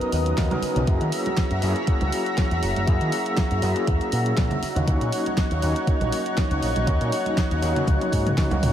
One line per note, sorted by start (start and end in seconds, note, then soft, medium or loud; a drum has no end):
0.00 0.35 F#3 medium
0.00 0.35 B3 medium
0.00 0.84 B3 medium
0.00 0.35 C#4 medium
0.00 0.36 D#4 medium
0.00 0.36 A#4 medium
0.00 0.83 A#4 medium
0.00 0.83 D#5 medium
0.00 closed hi-hat soft
0.12 0.32 D#2 medium
0.12 open hi-hat loud
0.26 closed hi-hat soft
0.37 0.48 D#2 medium
0.37 0.48 F#3 medium
0.37 0.48 B3 medium
0.37 0.48 C#4 medium
0.37 0.48 D#4 medium
0.37 0.48 A#4 medium
0.37 kick loud
0.37 snare loud
0.37 open hi-hat medium
0.51 0.85 F#3 medium
0.51 0.85 B3 medium
0.51 0.85 C#4 medium
0.51 0.85 D#4 medium
0.51 0.85 A#4 medium
0.51 closed hi-hat soft
0.51 high conga medium
0.51 low conga medium
0.62 muted picked electric bass stroke soft
0.62 open hi-hat loud
0.76 0.85 B1 medium
0.76 closed hi-hat soft
0.76 low conga medium
0.87 0.98 F#2 loud
0.87 1.59 F#3 medium
0.87 1.60 A#3 medium
0.87 1.60 C#4 medium
0.87 1.60 E4 medium
0.87 4.59 F#4 medium
0.87 1.60 G#4 medium
0.87 4.59 E5 medium
0.87 4.59 A#5 medium
0.87 kick loud
0.87 closed hi-hat medium
1.01 1.10 D#3 medium
1.01 closed hi-hat soft
1.12 open hi-hat loud
1.26 closed hi-hat soft
1.26 high conga medium
1.37 kick loud
1.37 snare loud
1.37 closed hi-hat medium
1.51 1.60 F#2 medium
1.51 closed hi-hat soft
1.61 1.73 F#2 loud
1.61 2.84 F#3 medium
1.61 2.85 A#3 medium
1.61 2.85 C#4 medium
1.61 2.85 E4 medium
1.61 2.85 G#4 medium
1.61 open hi-hat loud
1.76 closed hi-hat soft
1.87 muted picked electric bass stroke soft
1.87 kick loud
1.87 closed hi-hat medium
2.01 2.10 C#2 medium
2.01 closed hi-hat soft
2.01 high conga medium
2.12 open hi-hat loud
2.26 closed hi-hat soft
2.38 kick loud
2.38 snare loud
2.38 closed hi-hat medium
2.51 2.60 E2 loud
2.51 closed hi-hat soft
2.62 2.73 F#1 medium
2.62 open hi-hat loud
2.76 2.85 F#1 medium
2.76 closed hi-hat soft
2.76 high conga medium
2.87 2.98 F#2 medium
2.87 3.60 F#3 medium
2.87 3.60 A#3 medium
2.87 3.60 C#4 medium
2.87 3.60 E4 medium
2.87 3.61 G#4 medium
2.87 kick loud
2.87 closed hi-hat medium
3.01 3.10 D#3 medium
3.01 closed hi-hat soft
3.12 open hi-hat medium
3.26 closed hi-hat soft
3.37 kick loud
3.37 snare loud
3.37 closed hi-hat medium
3.51 3.60 F#2 medium
3.51 closed hi-hat soft
3.62 3.73 F#2 loud
3.62 4.61 F#3 medium
3.62 4.61 A#3 medium
3.62 4.62 C#4 medium
3.62 4.62 E4 medium
3.62 4.62 G#4 medium
3.62 open hi-hat loud
3.76 closed hi-hat soft
3.87 3.98 E2 medium
3.87 kick loud
3.87 closed hi-hat medium
4.01 closed hi-hat soft
4.12 4.32 A#2 medium
4.12 open hi-hat loud
4.26 closed hi-hat soft
4.37 4.48 A#2 medium
4.37 kick loud
4.37 snare loud
4.37 closed hi-hat medium
4.50 closed hi-hat soft
4.50 high conga medium
4.50 low conga medium
4.62 8.73 D#4 medium
4.62 8.73 C#5 medium
4.62 8.73 F#5 medium
4.62 muted picked electric bass stroke soft
4.62 open hi-hat loud
4.76 4.85 D#2 loud
4.76 closed hi-hat soft
4.76 low conga medium
4.87 4.98 D#2 loud
4.87 5.60 F#3 medium
4.87 5.60 A#3 medium
4.87 5.60 C#4 medium
4.87 5.60 D#4 medium
4.87 5.61 F#4 medium
4.87 kick loud
4.87 closed hi-hat medium
5.01 5.10 A#2 medium
5.01 closed hi-hat soft
5.12 open hi-hat loud
5.26 closed hi-hat soft
5.26 high conga medium
5.37 kick loud
5.37 snare loud
5.37 closed hi-hat medium
5.51 5.60 D#2 medium
5.51 closed hi-hat soft
5.62 5.73 D#2 loud
5.62 6.85 F#3 medium
5.62 6.85 A#3 medium
5.62 6.85 C#4 medium
5.62 6.86 D#4 medium
5.62 6.86 F#4 medium
5.62 open hi-hat medium
5.76 closed hi-hat soft
5.87 muted picked electric bass stroke soft
5.87 kick loud
5.87 closed hi-hat medium
6.01 6.10 A#1 medium
6.01 closed hi-hat soft
6.01 high conga medium
6.12 open hi-hat loud
6.26 closed hi-hat soft
6.37 kick loud
6.37 snare loud
6.37 closed hi-hat medium
6.51 6.60 C#2 medium
6.51 closed hi-hat soft
6.63 6.73 A#1 medium
6.63 open hi-hat medium
6.76 6.85 A#1 medium
6.76 closed hi-hat soft
6.76 high conga medium
6.87 6.98 D#2 loud
6.87 7.59 F#3 medium
6.87 7.60 A#3 medium
6.87 7.60 C#4 medium
6.87 7.60 D#4 medium
6.87 7.60 F#4 medium
6.87 kick loud
6.87 closed hi-hat medium
7.01 7.10 A#2 medium
7.01 closed hi-hat soft
7.12 open hi-hat medium
7.26 closed hi-hat soft
7.26 high conga medium
7.37 kick loud
7.37 snare loud
7.37 closed hi-hat medium
7.51 7.60 D#2 medium
7.51 closed hi-hat soft
7.62 7.73 D#2 loud
7.62 8.35 F#3 medium
7.62 8.35 A#3 medium
7.62 8.35 C#4 medium
7.62 8.36 D#4 medium
7.62 8.36 F#4 medium
7.62 open hi-hat loud
7.76 closed hi-hat soft
7.76 low conga medium
7.87 7.98 C#2 medium
7.87 kick loud
7.87 closed hi-hat medium
7.87 high tom medium
8.01 closed hi-hat soft
8.01 high tom medium
8.12 8.32 G#2 medium
8.12 kick medium
8.12 open hi-hat loud
8.27 closed hi-hat soft
8.27 mid tom medium
8.37 8.48 F#3 medium
8.37 8.48 A#3 medium
8.37 8.48 C#4 medium
8.37 8.48 D#4 medium
8.37 8.48 F#4 medium
8.37 kick loud
8.37 snare loud
8.37 open hi-hat medium
8.37 mid tom medium
8.51 8.60 C#2 medium
8.51 8.73 F#3 medium
8.51 8.73 A#3 medium
8.51 8.73 C#4 medium
8.51 8.73 D#4 medium
8.51 8.73 F#4 medium
8.51 closed hi-hat soft
8.51 high conga medium
8.51 low conga medium
8.62 8.73 C#2 medium
8.62 mid tom medium
8.62 open hi-hat medium